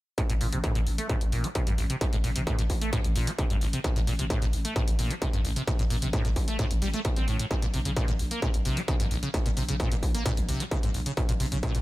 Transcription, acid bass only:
0.18 0.22 A2 loud
0.29 0.33 A2 loud
0.41 0.47 A#2 medium
0.52 0.59 C3 medium
0.64 0.73 A2 loud
0.75 0.79 A2 loud
0.98 1.08 A3 medium
1.09 1.16 A2 loud
1.32 1.46 A#2 medium
1.44 1.48 A3 loud
1.55 1.62 C3 medium
1.67 1.73 G2 medium
1.78 1.85 A1 medium
1.90 1.96 C3 medium
2.01 2.05 A2 loud
2.13 2.17 A2 loud
2.24 2.30 A#2 medium
2.36 2.42 C3 medium
2.47 2.57 A2 loud
2.59 2.62 A2 loud
2.81 2.91 A3 medium
2.93 2.99 A2 loud
3.16 3.29 A#2 medium
3.27 3.31 A3 loud
3.39 3.45 C3 medium
3.50 3.56 G2 medium
3.62 3.68 A1 medium
3.73 3.79 C3 medium
3.84 3.88 A2 loud
3.96 4.00 A2 loud
4.07 4.14 A#2 medium
4.19 4.25 C3 medium
4.30 4.40 A2 loud
4.42 4.46 A2 loud
4.65 4.74 A3 medium
4.76 4.82 A2 loud
4.99 5.12 A#2 medium
5.10 5.14 A3 loud
5.22 5.28 C3 medium
5.33 5.40 G2 medium
5.45 5.51 A1 medium
5.56 5.63 C3 medium
5.67 5.71 A2 loud
5.79 5.83 A2 loud
5.90 5.97 A#2 medium
6.02 6.08 C3 medium
6.13 6.23 A2 loud
6.25 6.29 A2 loud
6.48 6.57 A3 medium
6.59 6.66 A2 loud
6.82 6.89 G3 loud
6.94 7.00 A3 loud
7.05 7.09 A2 medium
7.17 7.26 C4 medium
7.28 7.38 A2 medium
7.40 7.46 A2 medium
7.51 7.55 A#2 loud
7.63 7.66 A#2 loud
7.74 7.80 C3 medium
7.85 7.92 C#3 medium
7.97 8.06 A#2 loud
8.08 8.12 A#2 loud
8.31 8.40 A#3 medium
8.42 8.49 A#2 loud
8.65 8.79 C3 medium
8.77 8.81 A#3 loud
8.88 8.95 C#3 medium
9.00 9.06 G#2 medium
9.11 9.18 A#1 medium
9.23 9.29 C#3 medium
9.34 9.38 A#2 loud
9.46 9.49 A#2 loud
9.57 9.63 C3 medium
9.69 9.75 C#3 medium
9.80 9.89 A#2 loud
9.92 9.95 A#2 loud
10.15 10.24 A#3 medium
10.26 10.32 A#2 loud
10.49 10.62 C3 medium
10.60 10.64 A#3 loud
10.72 10.78 C#3 medium
10.83 10.89 G#2 medium
10.94 11.01 A#1 medium
11.06 11.12 C#3 medium
11.17 11.21 A#2 loud
11.29 11.33 A#2 loud
11.40 11.47 C3 medium
11.52 11.58 C#3 medium
11.63 11.73 A#2 loud
11.75 11.78 A#2 loud

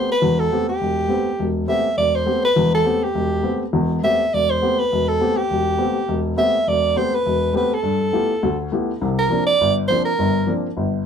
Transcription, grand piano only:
0.00 0.11 A3 soft
0.00 0.11 B3 soft
0.00 0.11 C4 soft
0.00 0.11 G4 soft
0.22 0.47 E1 medium
0.22 0.47 E2 medium
0.51 0.70 A3 soft
0.51 0.70 B3 soft
0.51 0.70 C4 soft
0.51 0.70 G4 medium
0.81 1.05 E1 medium
1.08 1.27 A3 soft
1.08 1.28 B3 soft
1.08 1.28 C4 soft
1.08 1.28 G4 soft
1.39 1.64 E1 medium
1.68 1.86 A3 soft
1.68 1.87 B3 soft
1.68 1.86 C4 soft
1.68 1.87 G4 medium
1.97 2.22 E1 medium
2.26 2.45 A3 soft
2.26 2.45 B3 soft
2.26 2.45 C4 soft
2.26 2.45 G4 medium
2.56 2.81 E1 medium
2.56 2.81 E2 medium
2.84 3.03 A3 soft
2.84 3.04 B3 soft
2.84 3.04 C4 soft
2.84 3.04 G4 medium
3.15 3.40 E1 medium
3.43 3.62 A3 soft
3.43 3.62 B3 soft
3.43 3.62 C4 soft
3.43 3.62 G4 medium
3.73 3.98 E1 medium
3.73 3.98 E2 medium
4.03 4.21 A3 soft
4.03 4.21 B3 soft
4.03 4.22 C4 soft
4.03 4.22 G4 medium
4.33 4.57 E1 medium
4.62 4.80 A3 soft
4.62 4.80 B3 soft
4.62 4.80 C4 soft
4.62 4.80 G4 medium
4.92 5.16 E1 medium
5.20 5.38 A3 soft
5.20 5.39 B3 soft
5.20 5.39 C4 soft
5.20 5.39 G4 medium
5.50 5.75 E1 medium
5.78 5.97 A3 soft
5.78 5.97 B3 soft
5.78 5.97 C4 soft
5.78 5.97 G4 medium
6.08 6.33 E1 medium
6.37 6.55 A3 soft
6.37 6.55 B3 soft
6.37 6.56 C4 soft
6.37 6.56 G4 medium
6.67 6.91 E1 medium
6.96 7.14 A3 soft
6.96 7.14 B3 soft
6.96 7.14 C4 soft
6.96 7.15 G4 medium
7.26 7.50 E1 medium
7.54 7.72 A3 soft
7.54 7.73 B3 soft
7.54 7.73 C4 soft
7.54 7.73 G4 medium
7.83 8.08 G2 medium
8.12 8.31 A3 soft
8.12 8.31 B3 soft
8.12 8.31 E4 soft
8.12 8.31 F4 soft
8.12 8.31 G4 medium
8.43 8.67 D2 medium
8.72 8.90 A3 soft
8.72 8.90 B3 soft
8.72 8.90 E4 soft
8.72 8.91 F4 soft
8.72 8.91 G4 medium
9.01 9.26 C2 medium
9.01 9.26 C3 medium
9.30 9.48 F3 medium
9.30 9.49 A#3 soft
9.30 9.49 C4 soft
9.30 9.49 D4 medium
9.61 9.85 G1 medium
9.90 10.08 F3 medium
9.90 10.08 A#3 soft
9.90 10.08 C4 soft
9.90 10.08 D4 medium
10.19 10.43 G1 medium
10.19 10.43 G2 medium
10.47 10.65 F3 soft
10.47 10.66 A#3 soft
10.47 10.66 C4 soft
10.47 10.66 D4 medium
10.77 11.01 G1 medium

